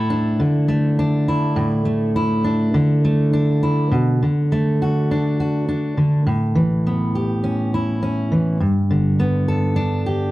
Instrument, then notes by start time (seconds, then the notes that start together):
steel-string acoustic guitar
Already playing: A2 A3 E4
0.10 D4
0.40 D3
0.68 A3
0.99 D4
1.28 E4
1.56 A2
1.85 A3
2.16 E4
2.44 D4
2.74 D3
3.04 A3
3.33 D4
3.63 E4
3.92 B2
4.23 D3
4.52 A3
4.82 F#4
5.11 D4
5.40 F#4
5.69 D4
5.97 D3
6.27 A2
6.55 E3
6.87 B3
7.15 G4
7.44 C#4
7.74 E4
8.03 C#4
8.32 E3
8.60 G2
8.91 D3
9.20 B3
9.48 A4
9.76 D4
10.06 G4